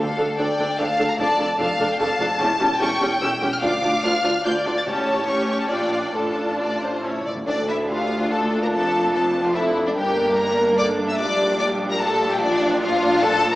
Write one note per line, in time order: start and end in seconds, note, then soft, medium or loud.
0.00 0.55 D3 medium
0.00 0.38 A4 medium
0.00 0.38 F5 medium
0.18 0.26 D2 medium
0.18 0.26 D4 medium
0.18 0.26 A4 medium
0.38 0.46 D2 medium
0.38 0.46 D4 medium
0.38 0.46 A4 medium
0.38 0.79 D5 medium
0.38 0.78 G5 medium
0.58 0.66 D2 medium
0.58 0.67 D2 medium
0.58 0.67 D4 medium
0.58 0.67 A4 medium
0.79 0.87 D2 medium
0.79 0.87 D4 medium
0.79 0.87 A4 medium
0.79 1.19 F5 medium
0.79 1.09 A5 medium
0.99 1.07 D2 medium
0.99 1.07 D4 medium
0.99 1.07 A4 medium
1.10 1.19 A#5 medium
1.19 1.27 F1 medium
1.19 1.27 F2 medium
1.19 1.27 D4 medium
1.19 1.27 A4 medium
1.19 1.59 D5 medium
1.19 1.58 A5 loud
1.39 1.47 F1 medium
1.39 1.47 F2 medium
1.39 1.48 D4 medium
1.39 1.48 A4 medium
1.59 1.67 F1 medium
1.59 1.67 F2 medium
1.59 1.68 D4 medium
1.59 1.67 A4 medium
1.59 1.99 F5 medium
1.59 1.90 A5 medium
1.79 1.87 F1 medium
1.79 1.87 F2 medium
1.79 1.88 D4 medium
1.79 1.88 A4 medium
1.90 2.00 G5 medium
2.00 2.08 F1 medium
2.00 2.08 F2 medium
2.00 2.08 D4 medium
2.00 2.08 A4 medium
2.00 2.30 F5 medium
2.00 2.79 A5 medium
2.20 2.28 F1 medium
2.20 2.28 F2 medium
2.20 2.28 D4 medium
2.20 2.28 A4 medium
2.32 2.41 F5 medium
2.40 2.48 E1 medium
2.40 2.48 E2 medium
2.40 2.48 C#4 medium
2.40 2.48 G4 medium
2.40 2.81 A5 loud
2.60 2.68 E1 medium
2.60 2.68 E2 medium
2.60 2.69 C#4 medium
2.60 2.69 G4 medium
2.80 2.88 E1 medium
2.80 2.88 E2 medium
2.80 2.89 C#4 medium
2.80 2.89 G4 medium
2.80 3.62 G5 medium
2.80 3.20 C#6 medium
3.00 3.09 E1 medium
3.00 3.08 E2 medium
3.00 3.09 C#4 medium
3.00 3.09 G4 medium
3.21 3.29 E1 medium
3.21 3.29 E2 medium
3.21 3.30 C#4 medium
3.21 3.30 G4 medium
3.21 3.29 E6 medium
3.41 3.49 E1 medium
3.41 3.50 E2 medium
3.41 3.50 C#4 medium
3.41 3.50 G4 medium
3.52 3.56 F6 medium
3.62 3.70 D2 medium
3.62 3.71 D2 medium
3.62 3.70 D4 medium
3.62 3.70 F4 medium
3.62 4.45 F5 medium
3.62 4.03 D6 loud
3.83 3.91 D2 medium
3.83 3.92 D2 medium
3.83 3.91 D4 medium
3.83 3.91 F4 medium
4.03 4.12 D2 medium
4.03 4.11 D4 medium
4.03 4.11 F4 medium
4.03 4.44 F6 medium
4.24 4.32 D2 medium
4.24 4.33 D2 medium
4.24 4.32 D4 medium
4.24 4.32 F4 medium
4.44 4.53 D2 medium
4.44 4.53 D4 medium
4.44 4.53 F4 medium
4.44 4.86 D5 medium
4.44 4.52 G6 medium
4.66 4.74 D2 medium
4.66 4.74 D4 medium
4.66 4.74 F4 medium
4.77 4.81 A6 medium
4.86 5.66 A1 medium
4.86 5.45 A2 medium
4.86 5.66 A2 medium
4.86 5.25 C#4 medium
4.86 5.25 G4 medium
4.86 5.69 C#5 medium
4.86 5.27 A5 medium
5.28 5.69 C#4 medium
5.28 5.69 G4 medium
5.28 5.47 C#6 medium
5.49 5.59 C#6 medium
5.60 5.64 A5 medium
5.70 6.14 A#1 medium
5.70 6.14 A#2 medium
5.70 6.13 D4 medium
5.70 6.13 F4 medium
5.70 6.14 D5 medium
5.70 5.91 G5 medium
5.92 5.97 F5 medium
6.04 6.14 G5 medium
6.14 7.24 A1 medium
6.14 7.24 A2 medium
6.14 7.01 D4 medium
6.14 7.01 F4 medium
6.14 6.55 A4 medium
6.14 7.02 A5 medium
6.60 6.80 D5 medium
6.82 7.04 C5 medium
7.03 7.10 A2 soft
7.03 7.11 C#4 medium
7.03 7.26 E4 soft
7.03 7.26 C#5 medium
7.11 7.18 A2 soft
7.19 7.25 A2 soft
7.25 7.33 A2 medium
7.25 7.33 D5 medium
7.35 7.42 A2 medium
7.47 8.69 D2 medium
7.47 9.92 A3 medium
7.47 7.55 D4 medium
7.47 9.92 D4 medium
7.47 7.87 A4 medium
7.47 7.67 D5 medium
7.68 7.77 E4 medium
7.68 7.76 E5 medium
7.89 8.30 F4 medium
7.89 8.31 G4 medium
7.89 8.30 F5 medium
8.30 9.55 F4 medium
8.30 8.62 A4 medium
8.30 8.39 A5 medium
8.62 8.66 A#4 medium
8.62 8.67 A#5 medium
8.72 9.96 F1 medium
8.72 9.96 F2 medium
8.72 9.13 A4 medium
8.72 9.13 A5 medium
9.14 9.22 A4 medium
9.14 9.44 A5 medium
9.45 9.55 F4 medium
9.45 9.56 F5 medium
9.54 9.85 E4 medium
9.54 9.96 A4 medium
9.54 9.63 E5 medium
9.86 9.90 D4 medium
9.86 9.91 D5 medium
9.95 11.16 G1 medium
9.95 11.16 G2 medium
9.95 11.14 A#3 medium
9.95 12.36 D4 medium
9.95 10.36 G4 medium
9.95 10.78 A#4 medium
9.95 10.36 G5 medium
10.36 10.77 A#4 medium
10.36 10.77 A#5 medium
10.77 11.18 A4 medium
10.77 10.85 D5 medium
10.77 10.86 D6 loud
11.07 11.18 E5 medium
11.07 11.18 E6 medium
11.18 13.55 A#1 medium
11.18 13.55 A#2 medium
11.18 12.36 G3 medium
11.18 11.99 G4 medium
11.18 11.58 D5 medium
11.18 11.58 D6 loud
11.59 11.68 D5 medium
11.59 11.67 D6 loud
11.90 12.00 A#4 medium
11.90 12.00 A#5 loud
12.00 12.40 G4 medium
12.00 12.29 A4 medium
12.00 12.30 A5 loud
12.30 12.40 G4 medium
12.30 12.40 G5 medium
12.40 13.55 F3 medium
12.40 12.80 D4 medium
12.40 13.55 D4 medium
12.40 12.80 F4 medium
12.40 12.81 D5 loud
12.80 13.21 D4 medium
12.80 13.21 F4 medium
12.80 13.21 F5 loud
13.21 13.55 F4 medium
13.21 13.52 A4 loud
13.21 13.52 A5 loud
13.51 13.55 A#4 medium